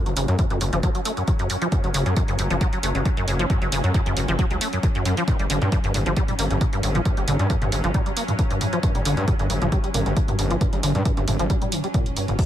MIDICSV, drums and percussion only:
0, 0, Header, 1, 2, 480
1, 0, Start_track
1, 0, Tempo, 444444
1, 1860, Time_signature, 4, 2, 24, 8
1, 13452, End_track
2, 0, Start_track
2, 0, Title_t, "Drums"
2, 66, Note_on_c, 9, 42, 54
2, 174, Note_off_c, 9, 42, 0
2, 179, Note_on_c, 9, 46, 107
2, 287, Note_off_c, 9, 46, 0
2, 306, Note_on_c, 9, 42, 55
2, 414, Note_off_c, 9, 42, 0
2, 418, Note_on_c, 9, 42, 92
2, 419, Note_on_c, 9, 36, 118
2, 526, Note_off_c, 9, 42, 0
2, 527, Note_off_c, 9, 36, 0
2, 544, Note_on_c, 9, 42, 55
2, 652, Note_off_c, 9, 42, 0
2, 658, Note_on_c, 9, 46, 96
2, 766, Note_off_c, 9, 46, 0
2, 786, Note_on_c, 9, 42, 56
2, 894, Note_off_c, 9, 42, 0
2, 899, Note_on_c, 9, 36, 117
2, 899, Note_on_c, 9, 42, 90
2, 1007, Note_off_c, 9, 36, 0
2, 1007, Note_off_c, 9, 42, 0
2, 1025, Note_on_c, 9, 42, 54
2, 1133, Note_off_c, 9, 42, 0
2, 1138, Note_on_c, 9, 46, 102
2, 1246, Note_off_c, 9, 46, 0
2, 1265, Note_on_c, 9, 42, 55
2, 1373, Note_off_c, 9, 42, 0
2, 1378, Note_on_c, 9, 42, 96
2, 1379, Note_on_c, 9, 36, 121
2, 1486, Note_off_c, 9, 42, 0
2, 1487, Note_off_c, 9, 36, 0
2, 1505, Note_on_c, 9, 42, 55
2, 1613, Note_off_c, 9, 42, 0
2, 1618, Note_on_c, 9, 46, 96
2, 1726, Note_off_c, 9, 46, 0
2, 1746, Note_on_c, 9, 42, 53
2, 1854, Note_off_c, 9, 42, 0
2, 1858, Note_on_c, 9, 42, 93
2, 1859, Note_on_c, 9, 36, 119
2, 1966, Note_off_c, 9, 42, 0
2, 1967, Note_off_c, 9, 36, 0
2, 1986, Note_on_c, 9, 42, 53
2, 2094, Note_off_c, 9, 42, 0
2, 2099, Note_on_c, 9, 46, 105
2, 2207, Note_off_c, 9, 46, 0
2, 2225, Note_on_c, 9, 42, 52
2, 2333, Note_off_c, 9, 42, 0
2, 2338, Note_on_c, 9, 42, 96
2, 2339, Note_on_c, 9, 36, 121
2, 2446, Note_off_c, 9, 42, 0
2, 2447, Note_off_c, 9, 36, 0
2, 2465, Note_on_c, 9, 42, 54
2, 2573, Note_off_c, 9, 42, 0
2, 2578, Note_on_c, 9, 46, 98
2, 2686, Note_off_c, 9, 46, 0
2, 2705, Note_on_c, 9, 42, 55
2, 2813, Note_off_c, 9, 42, 0
2, 2818, Note_on_c, 9, 42, 89
2, 2819, Note_on_c, 9, 36, 123
2, 2926, Note_off_c, 9, 42, 0
2, 2927, Note_off_c, 9, 36, 0
2, 2945, Note_on_c, 9, 42, 55
2, 3053, Note_off_c, 9, 42, 0
2, 3059, Note_on_c, 9, 46, 104
2, 3167, Note_off_c, 9, 46, 0
2, 3186, Note_on_c, 9, 42, 53
2, 3294, Note_off_c, 9, 42, 0
2, 3299, Note_on_c, 9, 36, 119
2, 3299, Note_on_c, 9, 42, 94
2, 3407, Note_off_c, 9, 36, 0
2, 3407, Note_off_c, 9, 42, 0
2, 3426, Note_on_c, 9, 42, 53
2, 3534, Note_off_c, 9, 42, 0
2, 3539, Note_on_c, 9, 46, 88
2, 3647, Note_off_c, 9, 46, 0
2, 3666, Note_on_c, 9, 42, 52
2, 3774, Note_off_c, 9, 42, 0
2, 3779, Note_on_c, 9, 36, 124
2, 3779, Note_on_c, 9, 42, 88
2, 3887, Note_off_c, 9, 36, 0
2, 3887, Note_off_c, 9, 42, 0
2, 3906, Note_on_c, 9, 42, 48
2, 4014, Note_off_c, 9, 42, 0
2, 4019, Note_on_c, 9, 46, 110
2, 4127, Note_off_c, 9, 46, 0
2, 4146, Note_on_c, 9, 42, 50
2, 4254, Note_off_c, 9, 42, 0
2, 4259, Note_on_c, 9, 36, 117
2, 4260, Note_on_c, 9, 42, 91
2, 4367, Note_off_c, 9, 36, 0
2, 4368, Note_off_c, 9, 42, 0
2, 4387, Note_on_c, 9, 42, 49
2, 4495, Note_off_c, 9, 42, 0
2, 4500, Note_on_c, 9, 46, 93
2, 4608, Note_off_c, 9, 46, 0
2, 4627, Note_on_c, 9, 42, 53
2, 4735, Note_off_c, 9, 42, 0
2, 4739, Note_on_c, 9, 36, 123
2, 4740, Note_on_c, 9, 42, 90
2, 4847, Note_off_c, 9, 36, 0
2, 4848, Note_off_c, 9, 42, 0
2, 4866, Note_on_c, 9, 42, 53
2, 4974, Note_off_c, 9, 42, 0
2, 4980, Note_on_c, 9, 46, 110
2, 5088, Note_off_c, 9, 46, 0
2, 5106, Note_on_c, 9, 42, 48
2, 5214, Note_off_c, 9, 42, 0
2, 5219, Note_on_c, 9, 36, 119
2, 5219, Note_on_c, 9, 42, 93
2, 5327, Note_off_c, 9, 36, 0
2, 5327, Note_off_c, 9, 42, 0
2, 5347, Note_on_c, 9, 42, 52
2, 5455, Note_off_c, 9, 42, 0
2, 5459, Note_on_c, 9, 46, 92
2, 5567, Note_off_c, 9, 46, 0
2, 5586, Note_on_c, 9, 42, 52
2, 5694, Note_off_c, 9, 42, 0
2, 5699, Note_on_c, 9, 42, 86
2, 5699, Note_on_c, 9, 45, 67
2, 5700, Note_on_c, 9, 36, 121
2, 5807, Note_off_c, 9, 42, 0
2, 5807, Note_off_c, 9, 45, 0
2, 5808, Note_off_c, 9, 36, 0
2, 5826, Note_on_c, 9, 42, 50
2, 5934, Note_off_c, 9, 42, 0
2, 5938, Note_on_c, 9, 46, 107
2, 6046, Note_off_c, 9, 46, 0
2, 6066, Note_on_c, 9, 42, 49
2, 6066, Note_on_c, 9, 45, 69
2, 6174, Note_off_c, 9, 42, 0
2, 6174, Note_off_c, 9, 45, 0
2, 6179, Note_on_c, 9, 42, 92
2, 6180, Note_on_c, 9, 36, 115
2, 6287, Note_off_c, 9, 42, 0
2, 6288, Note_off_c, 9, 36, 0
2, 6306, Note_on_c, 9, 42, 50
2, 6414, Note_off_c, 9, 42, 0
2, 6419, Note_on_c, 9, 45, 67
2, 6419, Note_on_c, 9, 46, 94
2, 6527, Note_off_c, 9, 45, 0
2, 6527, Note_off_c, 9, 46, 0
2, 6546, Note_on_c, 9, 42, 51
2, 6654, Note_off_c, 9, 42, 0
2, 6658, Note_on_c, 9, 42, 89
2, 6660, Note_on_c, 9, 36, 114
2, 6766, Note_off_c, 9, 42, 0
2, 6768, Note_off_c, 9, 36, 0
2, 6786, Note_on_c, 9, 42, 52
2, 6786, Note_on_c, 9, 45, 73
2, 6894, Note_off_c, 9, 42, 0
2, 6894, Note_off_c, 9, 45, 0
2, 6899, Note_on_c, 9, 46, 101
2, 7007, Note_off_c, 9, 46, 0
2, 7026, Note_on_c, 9, 42, 49
2, 7134, Note_off_c, 9, 42, 0
2, 7139, Note_on_c, 9, 42, 89
2, 7139, Note_on_c, 9, 45, 70
2, 7140, Note_on_c, 9, 36, 116
2, 7247, Note_off_c, 9, 42, 0
2, 7247, Note_off_c, 9, 45, 0
2, 7248, Note_off_c, 9, 36, 0
2, 7266, Note_on_c, 9, 42, 51
2, 7374, Note_off_c, 9, 42, 0
2, 7379, Note_on_c, 9, 46, 93
2, 7487, Note_off_c, 9, 46, 0
2, 7506, Note_on_c, 9, 42, 51
2, 7506, Note_on_c, 9, 45, 69
2, 7614, Note_off_c, 9, 42, 0
2, 7614, Note_off_c, 9, 45, 0
2, 7619, Note_on_c, 9, 42, 86
2, 7620, Note_on_c, 9, 36, 116
2, 7727, Note_off_c, 9, 42, 0
2, 7728, Note_off_c, 9, 36, 0
2, 7746, Note_on_c, 9, 42, 48
2, 7854, Note_off_c, 9, 42, 0
2, 7859, Note_on_c, 9, 45, 68
2, 7859, Note_on_c, 9, 46, 100
2, 7967, Note_off_c, 9, 45, 0
2, 7967, Note_off_c, 9, 46, 0
2, 7986, Note_on_c, 9, 42, 49
2, 8094, Note_off_c, 9, 42, 0
2, 8099, Note_on_c, 9, 42, 86
2, 8100, Note_on_c, 9, 36, 107
2, 8207, Note_off_c, 9, 42, 0
2, 8208, Note_off_c, 9, 36, 0
2, 8226, Note_on_c, 9, 42, 50
2, 8226, Note_on_c, 9, 45, 67
2, 8334, Note_off_c, 9, 42, 0
2, 8334, Note_off_c, 9, 45, 0
2, 8340, Note_on_c, 9, 46, 91
2, 8448, Note_off_c, 9, 46, 0
2, 8466, Note_on_c, 9, 42, 52
2, 8574, Note_off_c, 9, 42, 0
2, 8579, Note_on_c, 9, 42, 85
2, 8579, Note_on_c, 9, 45, 67
2, 8580, Note_on_c, 9, 36, 116
2, 8687, Note_off_c, 9, 42, 0
2, 8687, Note_off_c, 9, 45, 0
2, 8688, Note_off_c, 9, 36, 0
2, 8706, Note_on_c, 9, 42, 53
2, 8814, Note_off_c, 9, 42, 0
2, 8820, Note_on_c, 9, 46, 101
2, 8928, Note_off_c, 9, 46, 0
2, 8946, Note_on_c, 9, 42, 49
2, 8946, Note_on_c, 9, 45, 69
2, 9054, Note_off_c, 9, 42, 0
2, 9054, Note_off_c, 9, 45, 0
2, 9059, Note_on_c, 9, 42, 88
2, 9060, Note_on_c, 9, 36, 110
2, 9167, Note_off_c, 9, 42, 0
2, 9168, Note_off_c, 9, 36, 0
2, 9186, Note_on_c, 9, 42, 49
2, 9294, Note_off_c, 9, 42, 0
2, 9299, Note_on_c, 9, 45, 66
2, 9299, Note_on_c, 9, 46, 85
2, 9407, Note_off_c, 9, 45, 0
2, 9407, Note_off_c, 9, 46, 0
2, 9426, Note_on_c, 9, 42, 50
2, 9534, Note_off_c, 9, 42, 0
2, 9539, Note_on_c, 9, 42, 89
2, 9540, Note_on_c, 9, 36, 113
2, 9647, Note_off_c, 9, 42, 0
2, 9648, Note_off_c, 9, 36, 0
2, 9665, Note_on_c, 9, 42, 51
2, 9665, Note_on_c, 9, 45, 64
2, 9773, Note_off_c, 9, 42, 0
2, 9773, Note_off_c, 9, 45, 0
2, 9779, Note_on_c, 9, 46, 98
2, 9887, Note_off_c, 9, 46, 0
2, 9906, Note_on_c, 9, 42, 51
2, 10014, Note_off_c, 9, 42, 0
2, 10019, Note_on_c, 9, 36, 114
2, 10019, Note_on_c, 9, 42, 92
2, 10019, Note_on_c, 9, 45, 67
2, 10127, Note_off_c, 9, 36, 0
2, 10127, Note_off_c, 9, 42, 0
2, 10127, Note_off_c, 9, 45, 0
2, 10145, Note_on_c, 9, 42, 50
2, 10253, Note_off_c, 9, 42, 0
2, 10259, Note_on_c, 9, 46, 85
2, 10367, Note_off_c, 9, 46, 0
2, 10386, Note_on_c, 9, 42, 55
2, 10386, Note_on_c, 9, 45, 69
2, 10494, Note_off_c, 9, 42, 0
2, 10494, Note_off_c, 9, 45, 0
2, 10499, Note_on_c, 9, 36, 108
2, 10499, Note_on_c, 9, 42, 85
2, 10607, Note_off_c, 9, 36, 0
2, 10607, Note_off_c, 9, 42, 0
2, 10625, Note_on_c, 9, 42, 53
2, 10733, Note_off_c, 9, 42, 0
2, 10739, Note_on_c, 9, 45, 67
2, 10739, Note_on_c, 9, 46, 99
2, 10847, Note_off_c, 9, 45, 0
2, 10847, Note_off_c, 9, 46, 0
2, 10866, Note_on_c, 9, 42, 50
2, 10974, Note_off_c, 9, 42, 0
2, 10979, Note_on_c, 9, 36, 108
2, 10979, Note_on_c, 9, 42, 86
2, 11087, Note_off_c, 9, 36, 0
2, 11087, Note_off_c, 9, 42, 0
2, 11106, Note_on_c, 9, 42, 49
2, 11106, Note_on_c, 9, 45, 69
2, 11214, Note_off_c, 9, 42, 0
2, 11214, Note_off_c, 9, 45, 0
2, 11219, Note_on_c, 9, 46, 88
2, 11327, Note_off_c, 9, 46, 0
2, 11346, Note_on_c, 9, 42, 49
2, 11454, Note_off_c, 9, 42, 0
2, 11459, Note_on_c, 9, 36, 121
2, 11459, Note_on_c, 9, 42, 96
2, 11459, Note_on_c, 9, 45, 62
2, 11567, Note_off_c, 9, 36, 0
2, 11567, Note_off_c, 9, 42, 0
2, 11567, Note_off_c, 9, 45, 0
2, 11586, Note_on_c, 9, 42, 53
2, 11694, Note_off_c, 9, 42, 0
2, 11699, Note_on_c, 9, 46, 98
2, 11807, Note_off_c, 9, 46, 0
2, 11826, Note_on_c, 9, 42, 53
2, 11826, Note_on_c, 9, 45, 66
2, 11934, Note_off_c, 9, 42, 0
2, 11934, Note_off_c, 9, 45, 0
2, 11939, Note_on_c, 9, 36, 113
2, 11939, Note_on_c, 9, 42, 93
2, 12047, Note_off_c, 9, 36, 0
2, 12047, Note_off_c, 9, 42, 0
2, 12065, Note_on_c, 9, 42, 53
2, 12173, Note_off_c, 9, 42, 0
2, 12179, Note_on_c, 9, 45, 65
2, 12179, Note_on_c, 9, 46, 94
2, 12287, Note_off_c, 9, 45, 0
2, 12287, Note_off_c, 9, 46, 0
2, 12306, Note_on_c, 9, 42, 54
2, 12414, Note_off_c, 9, 42, 0
2, 12419, Note_on_c, 9, 36, 111
2, 12419, Note_on_c, 9, 42, 91
2, 12527, Note_off_c, 9, 36, 0
2, 12527, Note_off_c, 9, 42, 0
2, 12546, Note_on_c, 9, 42, 53
2, 12546, Note_on_c, 9, 45, 65
2, 12654, Note_off_c, 9, 42, 0
2, 12654, Note_off_c, 9, 45, 0
2, 12659, Note_on_c, 9, 46, 103
2, 12767, Note_off_c, 9, 46, 0
2, 12785, Note_on_c, 9, 42, 55
2, 12893, Note_off_c, 9, 42, 0
2, 12898, Note_on_c, 9, 42, 93
2, 12898, Note_on_c, 9, 45, 65
2, 12899, Note_on_c, 9, 36, 106
2, 13006, Note_off_c, 9, 42, 0
2, 13006, Note_off_c, 9, 45, 0
2, 13007, Note_off_c, 9, 36, 0
2, 13026, Note_on_c, 9, 42, 54
2, 13134, Note_off_c, 9, 42, 0
2, 13139, Note_on_c, 9, 46, 86
2, 13247, Note_off_c, 9, 46, 0
2, 13266, Note_on_c, 9, 42, 50
2, 13266, Note_on_c, 9, 45, 64
2, 13374, Note_off_c, 9, 42, 0
2, 13374, Note_off_c, 9, 45, 0
2, 13379, Note_on_c, 9, 36, 115
2, 13379, Note_on_c, 9, 42, 98
2, 13379, Note_on_c, 9, 45, 60
2, 13379, Note_on_c, 9, 49, 78
2, 13452, Note_off_c, 9, 36, 0
2, 13452, Note_off_c, 9, 42, 0
2, 13452, Note_off_c, 9, 45, 0
2, 13452, Note_off_c, 9, 49, 0
2, 13452, End_track
0, 0, End_of_file